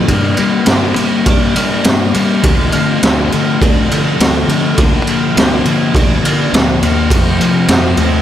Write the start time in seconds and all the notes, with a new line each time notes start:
Already playing: C3 F3 A3 C4
0.08 G2 G3 A#3 D4, kick, ride
0.37 D3 G3 A#3, ride
0.66 G2 D3 G3 A#3 D4, snare, ride
0.96 G3 A#3, ride
1.26 G2 G3 A#3 D4, kick, ride
1.55 G3 A#3 D4, ride
1.84 G2 D3 G3 A#3, snare, ride
2.14 G3 A#3, ride
2.43 D2 D3 F3 A3 D4, kick, ride
2.72 D3 F3 A3, ride
3.02 D2 D3 F3 A3 D4, snare, ride
3.32 D3 F3 A3, ride
3.61 D2 F3 A3 D4, kick, ride
3.89 D3 F3 A3 D4, ride
4.19 D2 D3 F3 A3, snare, ride
4.47 D3 F3 A3, ride
4.77 D2 D3 F3 A#3 D4, kick, ride
5.05 D3 F3 A#3, ride
5.35 D2 D3 F3 A#3 D4, snare, ride
5.65 D3 F3 A#3, ride
5.94 D2 F3 A#3 D4, kick, ride
6.22 D3 F3 A#3 D4, ride
6.27 A#3
6.52 D2 D3 F3 A#3, snare, ride
6.82 D#2 F3 A#3, ride
7.10 F2 F3 A3 C4, kick, ride
7.39 C3 F3 A3, ride
7.67 F2 C3 F3 A3 C4, snare, ride
7.96 D#2 F3 A3, ride